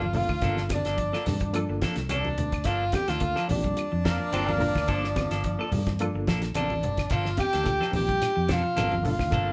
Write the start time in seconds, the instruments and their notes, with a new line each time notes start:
Already playing: fingered electric bass G1, tenor saxophone F4, trumpet F5
0.02 clean electric guitar F3, high conga
0.13 reed electric piano A#3 D4 F4 A4, tenor saxophone F4, trumpet F5, muted clean electric guitar stroke, open hi-hat, low conga
0.29 fingered electric bass D2, clean electric guitar D#3, muted clean electric guitar stroke, kick, claves
0.42 fingered electric bass G1, clean electric guitar F3 A#3 D4 A4, reed electric piano A#3 D4 F4 A4, kick, snare, closed hi-hat, low conga
0.57 snare
0.69 clean electric guitar D3, trumpet D5, muted clean electric guitar stroke, kick, snare, closed hi-hat, high conga, claves
0.75 tenor saxophone D4
0.85 fingered electric bass G1, clean electric guitar A#3 D4 A4, snare, closed hi-hat
0.97 clean electric guitar F3, muted clean electric guitar stroke, kick, closed hi-hat
1.13 clean electric guitar F3 A#3 D4 A4, reed electric piano A#3 D4 F4 A4, snare, claves
1.26 fingered electric bass G2, clean electric guitar G3, muted clean electric guitar stroke, snare, open hi-hat, high conga, low conga
1.40 muted clean electric guitar stroke, kick, closed hi-hat, high conga
1.53 clean electric guitar F3, reed electric piano A#3 D4 F4 A4, closed hi-hat, claves
1.69 fingered electric bass G1, muted clean electric guitar stroke
1.82 clean electric guitar F3 A#3 D4 A4, kick, snare, closed hi-hat
1.96 fingered electric bass C2, muted clean electric guitar stroke, snare, closed hi-hat
2.09 clean electric guitar C3 F3 A#3 D4 A4, tenor saxophone D4, trumpet D5, closed hi-hat, high conga, claves
2.25 high conga
2.38 fingered electric bass D2, clean electric guitar D3, muted clean electric guitar stroke, closed hi-hat, low conga
2.52 muted clean electric guitar stroke, kick, closed hi-hat, claves
2.64 fingered electric bass G1, clean electric guitar D3 F3 A#3 D4 A4, tenor saxophone F4, trumpet F5, kick, snare, closed hi-hat
2.92 tenor saxophone G4, trumpet G5, muted clean electric guitar stroke, kick, snare, closed hi-hat, high conga, claves
3.08 fingered electric bass D2, clean electric guitar D#3 A#3 D4 A4, tenor saxophone F4, trumpet F5, snare, closed hi-hat
3.20 reed electric piano A#3 D4 F4 A4, kick, closed hi-hat
3.36 clean electric guitar F3 A#3 D4 A4, snare, claves
3.48 fingered electric bass A#1, reed electric piano A#3 D4 F4 G4, tenor saxophone D4, trumpet D5, muted clean electric guitar stroke, open hi-hat, high conga, low conga
3.64 clean electric guitar G3, muted clean electric guitar stroke, kick, closed hi-hat, high conga
3.77 closed hi-hat, claves
3.92 fingered electric bass F2, clean electric guitar F3, muted clean electric guitar stroke
4.04 clean electric guitar F3 A#3 D4 A4, baritone saxophone A#3, kick, snare, closed hi-hat
4.19 clean electric guitar F3, muted clean electric guitar stroke
4.31 fingered electric bass G1, clean electric guitar F3 A#3 D4 A4, reed electric piano A#3 D4 F4 C5, baritone saxophone C4, closed hi-hat, high conga, claves
4.47 clean electric guitar F3, baritone saxophone A#3, high conga
4.59 reed electric piano A#3 D4 F4 A#4, muted clean electric guitar stroke, open hi-hat, low conga
4.75 fingered electric bass D2, clean electric guitar D#3, muted clean electric guitar stroke, kick, snare, claves
4.88 fingered electric bass G1, clean electric guitar F3 A#3 D4 A4, baritone saxophone F3, reed electric piano A#3 D4 F4 C5, kick, closed hi-hat
5.04 snare
5.16 clean electric guitar D3, muted clean electric guitar stroke, kick, snare, closed hi-hat, high conga, claves
5.31 fingered electric bass G1, clean electric guitar A#3 D4 A4, snare, closed hi-hat
5.44 clean electric guitar F3, kick, closed hi-hat
5.59 clean electric guitar F3 A4, reed electric piano A#3 D4 F4 A4, muted clean electric guitar stroke, claves
5.72 fingered electric bass G2, clean electric guitar G3, muted clean electric guitar stroke, open hi-hat, high conga, low conga
5.87 muted clean electric guitar stroke, kick, snare, closed hi-hat, high conga
5.99 clean electric guitar F3, reed electric piano A#3 D4 F4 A4, closed hi-hat, claves
6.15 fingered electric bass G1, muted clean electric guitar stroke
6.27 fingered electric bass A#1, clean electric guitar F3 A#3 D4 A4, kick, snare, closed hi-hat
6.42 muted clean electric guitar stroke, snare, closed hi-hat
6.55 fingered electric bass A1, clean electric guitar C3 F3 A#3 D4 A4, tenor saxophone D4, trumpet D5, closed hi-hat, high conga, claves
6.70 high conga
6.82 fingered electric bass G1, clean electric guitar D3, muted clean electric guitar stroke, closed hi-hat, low conga
6.97 muted clean electric guitar stroke, kick, snare, closed hi-hat, claves
7.10 fingered electric bass G1, clean electric guitar D3 F3 A#3 D4 A4, tenor saxophone F4, trumpet F5, kick, closed hi-hat, shekere
7.25 snare
7.37 tenor saxophone G4, trumpet G5, muted clean electric guitar stroke, kick, snare, closed hi-hat, high conga, claves, shekere
7.53 fingered electric bass D2, clean electric guitar D#3 A#3 D4 A4, snare, closed hi-hat
7.63 reed electric piano A#3 D4 F4 A4, kick, closed hi-hat, shekere
7.80 clean electric guitar F3 A#3 D4 A4, snare, claves
7.92 fingered electric bass A#1, reed electric piano A#3 D4 F4 G4, tenor saxophone G4, muted clean electric guitar stroke, open hi-hat, high conga, low conga, shekere
7.97 trumpet G5
8.08 clean electric guitar G3, muted clean electric guitar stroke, kick, closed hi-hat
8.22 snare, closed hi-hat, claves, shekere
8.36 fingered electric bass F2, clean electric guitar F3, muted clean electric guitar stroke
8.48 clean electric guitar F3 A#3 D4 A4, tenor saxophone F4, kick, snare, closed hi-hat, low conga, shekere
8.52 trumpet F5
8.64 clean electric guitar F3, muted clean electric guitar stroke
8.75 fingered electric bass G1, clean electric guitar F3 A#3 D4 A4, reed electric piano A#3 D4 F4 A4, closed hi-hat, high conga, claves, shekere
8.92 clean electric guitar F3, high conga
9.03 reed electric piano A#3 D4 F4 A4, tenor saxophone F4, muted clean electric guitar stroke, open hi-hat, low conga, shekere
9.07 trumpet F5
9.19 fingered electric bass D2, clean electric guitar D#3, muted clean electric guitar stroke, kick, snare, claves
9.30 fingered electric bass G1, clean electric guitar F3 A#3 D4 A4, reed electric piano A#3 D4 F4 A4, kick, closed hi-hat, low conga, shekere